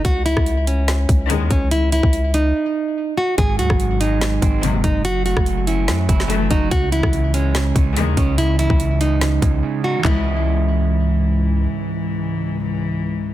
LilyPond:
<<
  \new Staff \with { instrumentName = "Nylon-string guitar" } { \time 4/4 \key cis \minor \tempo 4 = 144 fis'8 e'4 cis'2 cis'8 | e'8 e'4 dis'2 fis'8 | gis'8 fis'4 dis'2 dis'8 | fis'8 fis'4 e'2 dis'8 |
fis'8 e'4 cis'2 cis'8 | e'8 e'4 dis'2 fis'8 | e'2. r4 | r1 | }
  \new Staff \with { instrumentName = "Clean electric guitar" } { \clef bass \time 4/4 \key cis \minor r1 | r1 | gis,8 fis8 gis,8 gis8 gis,8 bis8 gis,8 dis'8 | fis8 a8 fis8 cis'8 fis8 e'8 fis8 fis'8 |
cis8 e8 cis8 gis8 cis8 cis'8 cis8 dis''8 | cis8 e8 cis8 gis8 cis8 cis'8 cis8 dis'8 | <e gis cis' dis''>1~ | <e gis cis' dis''>1 | }
  \new Staff \with { instrumentName = "String section" } { \clef bass \time 4/4 \key cis \minor r2. <e, dis gis>4 | r1 | r2. <dis, bis, fis>4 | r2. <fis, e a>4 |
r2. <e, dis gis>4 | r1 | <cis, gis, e>1~ | <cis, gis, e>1 | }
  \new Staff \with { instrumentName = "808-style bass" } { \clef bass \time 4/4 \key cis \minor cis,8. cis,4.~ cis,16 cis,8 dis,8 cis,8~ | cis,8. cis,4~ cis,16 r2 | gis,,8 dis,16 gis,,4.~ gis,,16 gis,,8. fis,,16 fis,,8~ | fis,,8. fis,,4~ fis,,16 fis,8 fis,,4 fis,,8 |
cis,8. cis,4.~ cis,16 cis,8 dis,8 cis,8~ | cis,8. cis,4.~ cis,16 cis,8 r4 | cis,1 | r1 | }
  \new DrumStaff \with { instrumentName = "Drums" } \drummode { \time 4/4 <hh bd>8 hh16 <bd ss>16 hh8 hh8 <hh sn>8 <hh bd>8 hh8 <hh bd>8 | hh8 hh16 bd16 hh8 hh8 r4 r4 | <hh bd>8 hh16 <bd ss>16 hh8 hh8 <hh sn>8 <hh bd>8 hh8 <hh bd>8 | hh8 hh16 <bd ss>16 hh8 hh8 <hh sn>8 <hh bd>16 sn16 hh8 <hh bd>8 |
<hh bd>8 hh16 <bd ss>16 hh8 hh8 <hh sn>8 <hh bd>8 hh8 <hh bd>8 | hh8 hh16 bd16 hh8 hh8 <hh sn>8 <hh bd>8 r4 | <hc bd tomfh>4 r4 r4 r4 | r4 r4 r4 r4 | }
>>